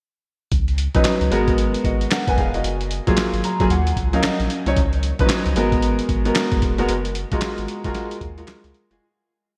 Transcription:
0.52 0.88 C#2 loud
0.52 kick loud
0.52 closed hi-hat medium
0.68 closed hi-hat soft
0.78 closed hi-hat medium
0.95 1.03 B1 loud
0.95 1.31 F#3 medium
0.95 1.32 C#4 medium
0.95 1.32 D#4 medium
0.95 1.32 B4 medium
0.95 kick medium
0.95 closed hi-hat soft
1.05 snare loud
1.05 clap medium
1.05 closed hi-hat medium
1.21 1.30 C#2 loud
1.21 closed hi-hat soft
1.31 1.76 G#1 medium
1.31 1.84 G#3 medium
1.31 1.84 B3 medium
1.31 1.84 F#4 medium
1.31 1.85 A#4 loud
1.31 closed hi-hat medium
1.48 kick loud
1.48 closed hi-hat medium
1.58 closed hi-hat medium
1.74 closed hi-hat medium
1.84 2.07 G#1 medium
1.84 2.10 F#4 medium
1.84 2.10 D#5 medium
1.84 kick medium
1.84 closed hi-hat medium
2.01 closed hi-hat soft
2.11 2.27 A#4 medium
2.11 2.27 F#5 medium
2.11 snare loud
2.11 clap medium
2.11 closed hi-hat medium
2.28 2.36 G#1 medium
2.28 2.38 B4 medium
2.28 2.37 G#5 medium
2.28 kick medium
2.28 closed hi-hat medium
2.38 2.51 E1 medium
2.38 2.54 G#4 medium
2.38 2.53 F5 medium
2.38 kick medium
2.38 closed hi-hat medium
2.54 2.62 F1 loud
2.54 2.80 F#4 medium
2.54 2.79 D#5 medium
2.54 closed hi-hat soft
2.64 3.00 F#1 loud
2.64 closed hi-hat medium
2.81 closed hi-hat soft
2.91 closed hi-hat medium
3.07 3.16 A#1 medium
3.07 3.46 F#3 medium
3.07 3.47 A#3 medium
3.07 3.47 F4 medium
3.07 3.47 G#4 medium
3.07 kick loud
3.07 closed hi-hat soft
3.17 snare loud
3.17 clap medium
3.17 closed hi-hat medium
3.33 3.42 G#1 medium
3.33 closed hi-hat soft
3.44 3.59 A#5 medium
3.44 closed hi-hat medium
3.60 3.69 F#1 medium
3.60 3.70 F#3 medium
3.60 3.71 A#3 medium
3.60 3.71 F4 medium
3.60 3.71 G#4 medium
3.60 3.70 G#5 medium
3.60 kick medium
3.60 closed hi-hat medium
3.70 3.92 D#2 loud
3.70 4.10 F#5 medium
3.70 closed hi-hat medium
3.87 closed hi-hat medium
3.97 4.19 C#2 medium
3.97 kick medium
3.97 closed hi-hat medium
4.13 4.52 F#3 medium
4.13 4.53 C#4 medium
4.13 4.53 D#4 medium
4.13 4.53 A#4 medium
4.13 4.23 F5 medium
4.13 closed hi-hat medium
4.23 4.30 A#1 soft
4.23 4.73 D#5 medium
4.23 snare loud
4.23 clap medium
4.23 closed hi-hat medium
4.40 4.48 A#1 loud
4.40 closed hi-hat medium
4.50 closed hi-hat medium
4.66 4.75 C2 medium
4.66 4.77 F#3 medium
4.66 4.77 C#4 medium
4.66 4.77 D#4 medium
4.66 4.77 C#5 medium
4.66 closed hi-hat soft
4.76 5.13 C#2 loud
4.76 kick loud
4.76 closed hi-hat medium
4.93 closed hi-hat soft
5.03 closed hi-hat medium
5.19 5.28 B1 medium
5.19 5.24 F3 medium
5.19 5.56 C#4 medium
5.19 5.56 D#4 medium
5.19 5.57 B4 medium
5.19 kick loud
5.19 closed hi-hat soft
5.26 5.59 F#3 medium
5.26 clap medium
5.26 closed hi-hat medium
5.30 snare loud
5.46 5.54 C#2 medium
5.46 closed hi-hat medium
5.56 6.01 G#1 loud
5.56 6.09 G#3 medium
5.56 6.09 B3 medium
5.56 6.10 F#4 medium
5.56 6.10 A#4 medium
5.56 closed hi-hat medium
5.72 kick loud
5.72 closed hi-hat medium
5.82 closed hi-hat medium
5.99 closed hi-hat medium
6.09 6.31 G#1 loud
6.09 kick medium
6.09 closed hi-hat medium
6.25 6.65 G#3 medium
6.25 6.65 B3 medium
6.25 6.65 F#4 medium
6.25 6.65 A#4 medium
6.25 closed hi-hat soft
6.35 snare loud
6.35 clap medium
6.35 closed hi-hat medium
6.52 6.61 G#1 medium
6.52 kick medium
6.52 closed hi-hat medium
6.62 6.76 E1 medium
6.62 kick medium
6.62 closed hi-hat medium
6.78 6.87 F1 medium
6.78 6.89 G#3 medium
6.78 6.89 B3 medium
6.78 6.89 F#4 medium
6.78 6.89 A#4 medium
6.78 closed hi-hat soft
6.89 7.25 F#1 loud
6.89 closed hi-hat medium
7.05 closed hi-hat soft
7.15 closed hi-hat medium
7.32 7.40 A#1 medium
7.32 7.71 G#3 medium
7.32 7.71 F4 medium
7.32 7.71 F#4 medium
7.32 7.72 A#4 medium
7.32 kick medium
7.32 closed hi-hat medium
7.42 snare loud
7.42 clap medium
7.42 closed hi-hat medium
7.58 7.67 G#1 loud
7.58 closed hi-hat soft
7.68 closed hi-hat medium
7.84 7.93 F#1 medium
7.84 8.24 G#3 medium
7.84 8.24 F4 medium
7.84 8.24 F#4 medium
7.84 8.25 A#4 medium
7.84 kick medium
7.84 closed hi-hat medium
7.95 snare medium
7.95 closed hi-hat medium
8.11 closed hi-hat medium
8.21 8.44 D#2 medium
8.21 kick medium
8.21 closed hi-hat medium
8.37 8.77 G#3 medium
8.37 8.77 F4 medium
8.37 8.77 F#4 medium
8.37 8.77 A#4 medium
8.37 closed hi-hat soft
8.48 8.55 C#2 soft
8.48 snare loud
8.48 clap medium
8.48 closed hi-hat medium
8.64 8.73 C#2 medium
8.64 closed hi-hat medium
8.74 closed hi-hat medium
8.90 9.00 F1 medium
8.90 9.01 G#3 medium
8.90 9.01 F4 medium
8.90 9.01 F#4 medium
8.90 9.02 G#4 loud
8.90 closed hi-hat soft

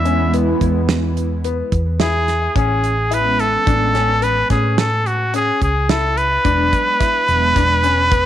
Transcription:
0.00 0.52 E2 medium
0.00 0.56 E3 medium
0.00 0.56 G#3 medium
0.00 0.56 B3 medium
0.00 0.56 E4 medium
0.00 0.34 E5 medium
0.05 0.22 C#4 medium
0.05 closed hi-hat medium
0.34 0.50 B3 medium
0.34 closed hi-hat medium
0.61 1.61 E2 medium
0.61 0.95 B3 medium
0.61 kick medium
0.61 closed hi-hat medium
0.89 snare loud
0.89 closed hi-hat medium
1.17 closed hi-hat medium
1.44 1.78 B3 medium
1.44 closed hi-hat medium
1.72 2.47 E2 medium
1.72 kick medium
1.72 closed hi-hat medium
2.00 2.33 E4 medium
2.00 2.52 G#4 medium
2.00 snare medium
2.00 closed hi-hat medium
2.28 snare soft
2.28 closed hi-hat medium
2.55 3.56 A1 medium
2.55 2.89 C#4 medium
2.55 3.15 G#4 medium
2.55 kick loud
2.55 closed hi-hat medium
2.84 closed hi-hat medium
3.11 3.31 E3 medium
3.11 3.31 G#3 medium
3.11 3.31 B3 medium
3.11 3.31 C#4 medium
3.11 3.44 E4 medium
3.11 3.42 B4 loud
3.11 closed hi-hat medium
3.39 4.25 A4 loud
3.39 closed hi-hat medium
3.66 4.42 A1 loud
3.66 3.86 E3 medium
3.66 3.86 G#3 medium
3.66 3.86 B3 medium
3.66 3.86 C#4 medium
3.66 3.83 D4 medium
3.66 kick loud
3.66 closed hi-hat medium
3.94 4.11 C#4 medium
3.94 snare soft
3.94 closed hi-hat medium
4.22 4.39 B3 medium
4.22 4.51 B4 medium
4.22 closed hi-hat medium
4.50 5.50 A2 medium
4.50 4.83 C#4 medium
4.50 4.80 G#4 medium
4.50 kick medium
4.50 snare soft
4.50 closed hi-hat medium
4.78 5.08 A4 medium
4.78 snare loud
4.78 closed hi-hat medium
5.06 5.34 F#4 medium
5.06 closed hi-hat medium
5.34 5.67 C#4 medium
5.34 5.61 G#4 medium
5.34 closed hi-hat medium
5.62 6.37 C#2 medium
5.62 5.91 G#4 medium
5.62 kick medium
5.62 closed hi-hat medium
5.89 6.23 E4 medium
5.89 6.19 A4 medium
5.89 snare loud
5.89 closed hi-hat medium
6.17 8.26 B4 loud
6.17 closed hi-hat medium
6.44 6.70 E1 medium
6.44 6.64 F#3 medium
6.44 6.64 G#3 medium
6.44 6.65 B3 medium
6.44 6.78 D4 medium
6.44 6.65 D4 medium
6.44 kick loud
6.44 closed hi-hat medium
6.73 kick medium
6.73 closed hi-hat medium
7.00 7.34 E4 medium
7.00 kick loud
7.00 snare soft
7.00 closed hi-hat medium
7.28 7.53 E1 medium
7.28 7.48 F#3 medium
7.28 7.48 G#3 medium
7.28 7.48 B3 medium
7.28 7.48 D4 medium
7.28 closed hi-hat medium
7.56 8.26 E1 medium
7.56 7.73 D4 medium
7.56 kick medium
7.56 snare soft
7.56 closed hi-hat medium
7.83 8.00 C#4 medium
7.83 closed hi-hat medium
8.11 8.26 B3 medium
8.11 kick loud
8.11 closed hi-hat medium

